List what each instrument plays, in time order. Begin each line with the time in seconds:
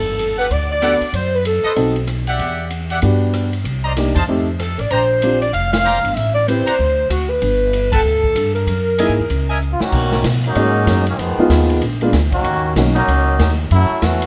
Already playing: upright bass G1, saxophone section A4
0.19 hi-hat pedal, ride
0.38 trumpet section G4 A4 B4 F#5, saxophone section B4
0.50 upright bass D2, saxophone section D5, ride
0.72 saxophone section D5
0.82 upright piano B3 D4 F#4 A4, trumpet section G4 A4 B4 F#5, cross-stick, hi-hat pedal, ride
1.01 muted upright bass stroke, ride
1.13 upright bass F#2, saxophone section C5, ride
1.35 saxophone section B4
1.45 saxophone section A4, hi-hat pedal, ride
1.64 trumpet section A4 B4 C5 D#5, muted upright bass stroke
1.76 upright bass B1, upright piano C4 D#4 F#4 A4, ride
1.96 ride
2.07 cross-stick, hi-hat pedal, ride
2.27 trumpet section G4 D5 E5 F#5, ride
2.39 upright bass E2, ride
2.70 hi-hat pedal, ride
2.90 trumpet section G4 D5 E5 F#5, ride
3.02 upright bass G2, upright piano B3 D4 F#4 G4, ride
3.34 cross-stick, hi-hat pedal, ride
3.53 ride
3.64 upright bass C2, ride
3.84 trumpet section C5 D5 D#5 A#5
3.97 upright piano A#3 D4 D#4 G4, snare, hi-hat pedal, ride
4.15 upright bass E2, trumpet section C5 D#5 F5 A5, kick, ride
4.28 upright bass F2, upright piano A3 C4 D#4 G4
4.59 saxophone section A4, cross-stick, hi-hat pedal, ride
4.78 upright bass A1, saxophone section D5, ride
4.90 upright bass A#1, trumpet section C5 D5 G5 A#5, saxophone section C5, ride
5.22 upright piano C4 D4 F4 G4, hi-hat pedal, ride
5.41 saxophone section D5, ride
5.52 upright bass F1, saxophone section F5, ride
5.72 saxophone section F5, snare, ride
5.85 trumpet section C5 D5 G5 A#5, hi-hat pedal
6.04 upright bass G1, ride
6.14 upright bass A1, saxophone section E5, ride
6.34 saxophone section D5
6.47 upright piano C4 E4 G4 B4, saxophone section C5, hi-hat pedal, ride
6.67 trumpet section C5 D5 F#5 A#5, muted upright bass stroke, ride
6.79 upright bass D2
7.10 upright bass D2, saxophone section F#4, cross-stick, hi-hat pedal, ride
7.29 saxophone section B4
7.42 upright bass G1, ride
7.73 hi-hat pedal, ride
7.92 saxophone section A4, trumpet section B4 F#5 G5 A5, kick, ride
8.04 upright bass D2
8.24 kick
8.35 upright bass G2, cross-stick, hi-hat pedal, ride
8.54 saxophone section A#4, ride
8.67 upright bass F#2, ride
8.99 upright piano A#3 D#4 E4 G#4, trumpet section A#4 D#5 E5 G#5, hi-hat pedal, ride
9.09 upright bass G#2
9.19 upright bass E2
9.30 upright bass C#2, ride
9.49 trumpet section A#4 D#5 E5 G#5
9.61 hi-hat pedal
9.72 trombone section F4
9.80 trombone section D#3 A#3 C#4 F#4, muted upright bass stroke, snare
9.92 upright bass B1, kick, crash
10.12 snare
10.24 upright bass B2, snare, hi-hat pedal, ride
10.44 trombone section F#3 A#3 C#4 D#4, ride
10.55 upright bass G#2, upright piano G#3 A#3 C#4 D#4 F#4, ride
10.87 upright bass F#2, snare, hi-hat pedal, ride
11.07 trombone section D#3 F#3 A#3 C#4, ride
11.18 upright bass F2, trombone section D#3 F3 G#3 B3, ride
11.38 upright piano F3 G#3 B3 D#4 F4, muted upright bass stroke
11.49 upright bass D#2, snare, hi-hat pedal, ride
11.70 ride
11.81 upright bass A#1, ride
12.01 upright piano G#3 A#3 B3 D4 F4, ride
12.13 upright bass D2, snare, hi-hat pedal, ride
12.32 trombone section D#3 A#3 C#4 F#4, kick, ride
12.44 upright bass D#2, ride
12.76 upright bass B1, upright piano F#3 A#3 C#4 D#4 F#4, snare, hi-hat pedal, ride
12.95 trombone section F#3 A#3 C#4 D#4, ride
13.08 upright bass C#2, ride
13.39 upright bass D#2, snare, hi-hat pedal, ride
13.71 upright bass F#2, trombone section F#3 A3 C#4 E4, ride
13.90 muted upright bass stroke
14.02 upright bass E2, trombone section E3 A3 C#4 F#4, snare, hi-hat pedal, ride
14.22 ride